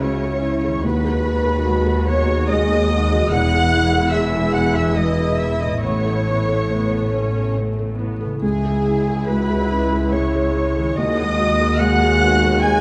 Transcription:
Already playing: C#2 C#3 G#3 C#4 E4 G#4 E5
0.01 G#3 F#4 C#5 C#6
0.24 G#4
0.42 E4
0.64 D#3 G#4
0.71 G#3
0.76 B3
0.80 D#4 F#4
0.84 D#2 G#3 F#4 B4 B5
1.04 G#4
1.25 F#4
1.45 G#4
1.67 G#3
1.87 G#4
2.07 B3 C#5 C#6
2.28 G#4
2.48 G#3 G#4 D#5 D#6
2.70 G#4
2.90 F#4
3.12 E3 G#4
3.17 G#3
3.22 B3
3.26 E1 E4
3.30 E2 E4 F#5 F#6
3.54 G#4
3.74 E4
3.94 G#4
4.11 G#4 E5 E6
4.15 G#3
4.35 G#4
4.53 B3 F#5 F#6
4.74 G#4 E5 E6
4.96 G#3 B4 D#5 D#6
5.20 G#4
5.37 E5 E6
5.42 E4
5.60 A2 G#4 D#5 D#6
5.68 A3
5.73 B3
5.77 A2 E4 C#6
5.81 A1 B3 A4 C#5
6.05 A4
6.27 E4
6.48 A4
6.68 A3 B3
6.93 A4
7.12 B3 C#4
7.36 A4
7.55 A3
7.79 A4
7.98 B3 E4
8.21 A4
8.25 C#3
8.29 G#3
8.34 C#4
8.38 E4 G#4 G#5
8.42 C#2 G#3 E4 G#4
8.64 G#4
8.87 E4
9.08 G#4
9.26 G#3 F#4 B4 B5
9.50 G#4
9.71 C#4 E4
9.93 G#4
10.12 G#3 C#5 C#6
10.35 G#4
10.55 E4
10.76 D#3 G#4
10.83 G#3
10.88 B3
10.92 F#4 D#5
10.96 D#2 D#4 F#4 D#5 D#6
11.20 G#4
11.37 F#4
11.61 G#4
11.78 G#3 G#4 F#5 F#6
12.02 G#4
12.23 B3
12.44 G#4
12.61 G#3 G#4 G#5 G#6

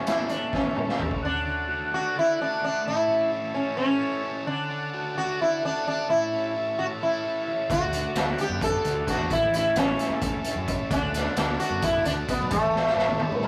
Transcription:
Already playing: A2 E3 A3 C#4 E4 A4
0.06 A3 E4, snare, closed hi-hat
0.29 C#4 D4, closed hi-hat
0.53 A3 C#4, kick, snare
0.64 high tom
0.75 A2 C#4, mid tom
0.89 snare
0.98 A1 A4, floor tom
1.11 kick
1.21 D3 D4 F#4 A4 D5 F#5
1.45 D4
1.68 F#4
1.92 D4 F#4
2.15 A4
2.19 E4
2.38 D4 F#4
2.61 D4
2.84 A2 E4 C#5 E5 A5
3.08 C#4
3.31 E4
3.54 C#4
3.77 C#4 A4
3.99 E4
4.23 C#4
4.46 D3 D4 D5 F#5 A5
4.70 D4
4.93 F#4
5.15 D4 F#4
5.39 E4 A4
5.63 D4 F#4
5.86 D4
6.08 A2 E4 C#5 E5
6.33 C#4
6.55 E4
6.78 C#4 F#4
7.01 E4 A4
7.24 E4
7.48 C#4
7.69 D2 D3 F#4 D5 F#5, kick, closed hi-hat
7.93 D4, closed hi-hat
8.15 D2 F#4, snare, closed hi-hat
8.38 D4 G4, closed hi-hat
8.49 F#2
8.61 A4, kick, closed hi-hat
8.83 D2 F#4, closed hi-hat
9.06 D4, kick, snare, closed hi-hat
9.10 F#4
9.19 E2
9.29 A1 A2 E4 C#5 E5, kick, closed hi-hat
9.52 C#4 E4, closed hi-hat
9.74 A1 C#4 E4, snare, closed hi-hat
9.98 C#4, snare, closed hi-hat
10.10 A2
10.21 A4, kick, closed hi-hat
10.44 E4, closed hi-hat
10.56 F#2
10.68 C#4, kick, closed hi-hat
10.90 D2 D3 D4 A4 D5 F#5, kick, closed hi-hat
11.14 D4, snare, closed hi-hat
11.36 D2 F#4, snare, closed hi-hat
11.60 D4 F#4, closed hi-hat
11.71 F#2
11.82 E4 A4, kick, closed hi-hat
12.05 D2 D4 F#4, closed hi-hat
12.28 B3 D4, kick, closed hi-hat
12.40 B1
12.51 A1 A2 A3 C#5 E5, kick, closed hi-hat
12.73 C#4, snare
12.87 snare
12.97 A1 E4, snare
13.08 high tom
13.19 C#4, high tom
13.27 G3
13.32 A2, mid tom
13.42 A4, mid tom

